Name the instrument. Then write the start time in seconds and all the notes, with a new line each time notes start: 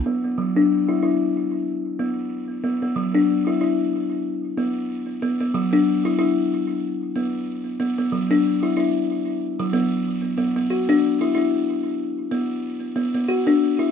kalimba
0.06 B3
0.24 B3
0.38 F#3
0.56 D4
0.89 E4
1.03 E4
1.99 B3
2.64 B3
2.82 B3
2.96 F#3
3.15 D4
3.47 E4
3.61 E4
4.58 B3
5.22 B3
5.41 B3
5.54 F#3
5.73 D4
6.05 E4
6.19 E4
7.16 B3
7.80 B3
7.98 B3
8.12 F#3
8.31 D4
8.63 E4
8.77 E4
9.60 F#3
9.73 B3
10.38 B3
10.56 B3
10.70 F#4
10.89 D4
11.21 E4
11.35 E4
12.32 B3
12.96 B3
13.15 B3
13.28 F#4
13.47 D4
13.79 E4